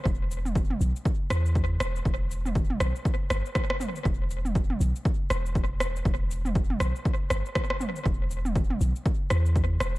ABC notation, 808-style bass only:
X:1
M:4/4
L:1/8
Q:"Swing 16ths" 1/4=120
K:Em
V:1 name="808-style bass" clef=bass
E,,,3 B,,, z E,,2 E,,, | E,,,3 B,,, z G,,, z2 | E,,,3 B,,, z E,,,3 | E,,,3 B,,, z G,,, z2 |
E,,,3 B,,, z E,,2 E,,, |]